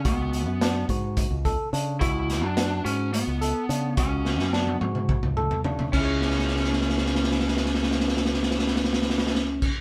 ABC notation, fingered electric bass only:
X:1
M:7/8
L:1/16
Q:1/4=107
K:C#phr
V:1 name="Fingered electric bass" clef=bass
C,,3 F,,3 G,,3 C,,2 z C,2 | C,,3 F,,3 G,,3 C,,2 z C,2 | C,,3 F,,3 G,,3 C,,2 z C,2 | C,,12- C,,2- |
C,,12- C,, z |]